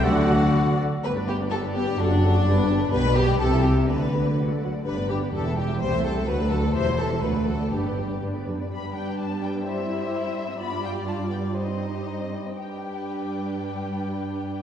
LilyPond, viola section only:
\new Staff \with { instrumentName = "Viola section" } { \time 2/4 \key g \major \tempo 4 = 125 << { fis'4. r8 | g'16 b'16 g'16 b'16 g'16 b'16 g'16 b'16 | a'16 fis'16 a'16 fis'16 g'16 b'16 g'16 b'16 | g'16 b'16 g'16 b'16 g'16 e'16 g'16 e'16 |
g'16 b'16 g'16 b'16 fis'16 a'16 fis'16 a'16 | g'16 b'16 g'16 b'16 g'16 e'16 g'16 e'16 | g'16 a'16 g'16 a'16 fis'16 a'16 fis'16 a'16 | g'16 e'16 g'16 e'16 fis'16 a'16 fis'16 a'16 |
g'16 b'16 g'16 b'16 g'16 b'16 g'16 b'16 | d'2 | e'2 | f'2 |
ees'4. r8 | d'2~ | d'2 | } \\ { r2 | b16 d'16 b16 d'16 b16 d'16 b16 d'16 | fis'16 d'16 fis'16 d'16 d'16 b16 d'16 b16 | b16 g16 b16 g16 e16 g16 e16 g16 |
b16 g16 b16 g16 fis16 a16 fis16 a16 | d'16 b16 d'16 b16 g16 b16 g16 b16 | g16 a16 g16 a16 fis16 a16 fis16 a16 | e16 g16 e16 g16 fis16 a16 fis16 a16 |
d'16 b16 d'16 b16 d'16 b16 d'16 b16 | g2~ | g2 | g2~ |
g4. r8 | g2~ | g2 | } >> }